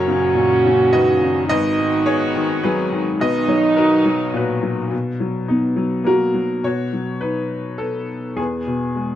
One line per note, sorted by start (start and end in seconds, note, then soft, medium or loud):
0.00 1.46 F#1 medium
0.00 1.46 F#2 medium
0.00 1.47 F#2 medium
0.00 1.47 A#2 medium
0.00 3.16 D#3 medium
0.00 1.47 C#4 medium
0.00 1.45 F#4 loud
0.00 0.89 A#4 medium
0.00 0.96 C#5 medium
0.08 0.64 C#3 soft
0.35 1.45 A#2 medium
0.65 1.21 C#3 medium
0.93 1.47 D#3 medium
0.93 1.46 B4 medium
0.93 1.48 D#5 medium
1.22 1.49 C#3 soft
1.47 3.17 G#1 medium
1.47 3.18 G#2 medium
1.47 3.17 G#2 medium
1.47 3.18 B3 medium
1.47 2.88 D#4 medium
1.47 3.18 F#4 medium
1.47 2.03 B4 medium
1.47 2.08 D#5 loud
1.79 2.34 D#3 soft
2.06 3.18 B3 medium
2.06 2.59 G#4 medium
2.06 2.64 C#5 medium
2.35 2.91 D#3 medium
2.63 3.19 F#3 medium
2.63 3.17 G#4 medium
2.63 3.20 B4 medium
2.92 3.19 D#3 soft
3.18 4.89 B1 medium
3.18 4.89 B2 medium
3.18 4.91 D#3 medium
3.18 4.91 F#3 medium
3.18 4.59 D#4 loud
3.18 4.91 D#4 medium
3.18 3.74 B4 medium
3.18 3.80 D#5 loud
3.48 4.04 F#3 soft
3.48 4.85 C#5 medium
3.77 4.90 D#4 medium
3.77 4.31 F#4 medium
3.77 4.31 A#4 medium
4.06 4.61 F#3 medium
4.34 4.90 A#2 medium
4.34 4.76 F#4 medium
4.34 4.76 B4 medium
4.63 4.91 F#3 soft
4.91 6.59 B2 soft
5.20 5.75 F#3 soft
5.48 6.86 B3 soft
5.48 6.60 D#4 soft
5.76 6.33 F#3 soft
6.04 6.61 A#3 soft
6.04 6.90 F#4 medium
6.04 6.66 A#4 medium
6.34 6.63 F#3 soft
6.63 8.33 B2 soft
6.63 7.49 F#4 medium
6.63 7.24 C#5 medium
6.93 8.06 F#3 soft
7.21 8.34 D#4 soft
7.21 7.81 B4 medium
7.78 8.36 B3 soft
7.78 8.39 A4 medium
8.36 9.15 E2 soft
8.36 9.15 B3 soft
8.36 9.15 G#4 medium
8.67 9.15 B2 soft
8.96 9.15 G#3 soft